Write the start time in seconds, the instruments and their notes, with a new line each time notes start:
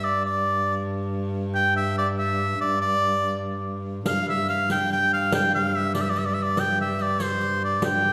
Already playing: viola da gamba G2
0.04 shawm D5
0.25 shawm D5
1.54 shawm G5
1.76 shawm E5
1.98 shawm D5
2.18 shawm E5
2.61 shawm D5
2.80 shawm D5
4.06 viola da gamba G2, shawm F5, riq
4.28 shawm E5
4.48 shawm F5, riq
4.70 shawm G5, riq
4.90 shawm G5, riq
5.13 shawm F5
5.32 shawm G5, riq
5.54 shawm F5
5.75 shawm E5
5.94 shawm D5, riq
6.01 shawm E5
6.09 shawm D5
6.16 shawm E5, riq
6.25 shawm D5
6.34 shawm E5
6.42 shawm D5
6.57 shawm G5, riq
6.81 shawm E5
6.99 shawm D5, riq
7.20 shawm C5, riq
7.41 riq
7.64 shawm D5
7.82 shawm G5, riq